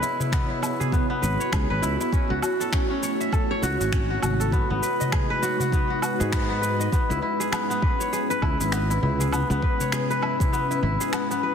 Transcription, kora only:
Already playing: B3 G#4 B4 C#5
0.02 E4
0.20 E4
0.32 B3
0.50 E4
0.62 E4
0.80 G#4
0.92 B3
1.10 B3
1.22 B4
1.40 C#5
1.52 G#4
1.70 B4
1.82 E4
2.00 E4
2.13 C#4
2.30 F#4
2.43 F#4
2.60 A4
2.73 C#4
2.90 C#4
3.03 C#5
3.20 E5
3.33 A4
3.51 C#5
3.63 F#4
3.81 F#4
3.93 C#4
4.10 F#4
4.23 F#4
4.40 A4
4.52 B3
4.70 B3
4.82 B4
5.00 D#5
5.12 G#4
5.30 B4
5.42 F#4
5.60 F#4
5.73 B3
5.90 F#4
6.02 F#4
6.20 G#4
6.32 B3
6.50 B3
6.62 B4
6.79 D#5
6.92 B3
7.10 E4
7.22 E4
7.40 G#4
7.52 B3
7.70 B3
7.82 B4
8.00 C#5
8.13 G#4
8.30 B4
8.43 E4
8.60 E4
8.72 B3
8.90 E4
9.03 E4
9.20 G#4
9.33 B3
9.50 B3
9.63 B4
9.81 C#5
9.93 G#4
10.10 B4
10.23 E4
10.40 E4
10.53 B3
10.71 E4
10.83 E4
11.00 G#4
11.13 B3
11.31 B3
11.43 B4

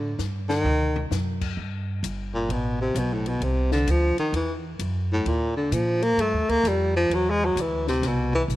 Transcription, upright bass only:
Already playing: A2
0.19 G2
0.64 D2
1.11 F#2
1.57 G2
2.03 G1
2.48 A1
2.94 B1
3.41 C2
3.87 D2
4.17 muted upright bass stroke
4.32 E2
4.79 F#2
5.25 D#2
5.72 A#2
6.17 G2
6.33 D#2
6.49 D2
6.63 F2
7.10 E2
7.56 D2
8.02 C2
8.48 B1

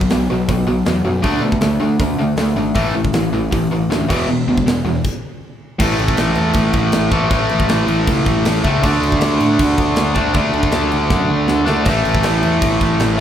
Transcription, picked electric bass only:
0.13 B1
0.31 B1
0.49 B1
0.68 B1
0.87 E2
1.05 F#2
1.24 D2
1.40 B2
1.60 D2
1.80 D3
1.99 D2
2.17 D2
2.37 D2
2.56 G#1
2.75 A1
2.95 A1
3.12 A1
3.32 A1
3.52 A1
3.70 A1
3.89 D2
4.10 E1
4.29 E1
4.47 D2
4.66 E1
4.85 E2
5.79 A1
5.99 A1
6.17 A1
6.37 E2
6.55 A1
6.73 A1
6.94 A1
7.12 A1
7.30 A1
7.51 A1
7.69 A1
7.87 A1
8.08 C#2
8.26 A1
8.45 A1
8.64 C#2
8.84 D2
9.01 D2
9.19 D2
9.41 A2
9.59 D2
9.78 D2
9.98 D2
10.16 D2
10.34 D2
10.53 D2
10.72 D2
10.93 D2
11.11 F#2
11.30 D2
11.50 D2
11.69 D2
11.86 A1
12.04 A1
12.25 A1
12.43 E2
12.62 A1
12.82 A1
13.00 A1

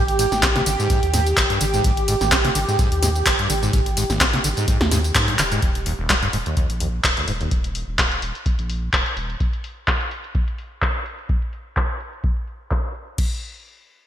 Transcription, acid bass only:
0.19 G#2
0.32 G#1
0.43 C4
0.56 C3
0.66 D3
0.79 G#2
1.13 G#2
1.50 G2
1.61 D3
1.74 G#2
1.84 G#2
2.08 G#2
2.21 G#1
2.32 C4
2.45 C3
2.55 D3
2.68 G#2
2.79 G#2
3.02 G#2
3.39 G2
3.50 D3
3.63 G#2
3.73 G#2
3.97 G#2
4.10 G#1
4.21 C4
4.34 C3
4.44 D3
4.57 G#2
4.91 G#2
5.28 G2
5.39 D3
5.52 G#2
5.62 D#2
5.86 D#2
5.99 D#1
6.10 G3
6.22 G2
6.33 G#2
6.46 D#2
6.80 D#2
7.17 D2
7.28 G#2
7.41 D#2

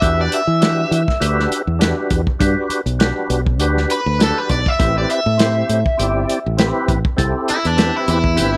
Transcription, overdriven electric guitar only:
Already playing: E5
0.21 D5
0.34 E5
3.91 B4
4.22 A4
4.38 B4
4.51 D5
4.68 E5
4.98 D5
5.11 E5
7.49 E4
7.67 D4
7.97 E4
8.10 E4

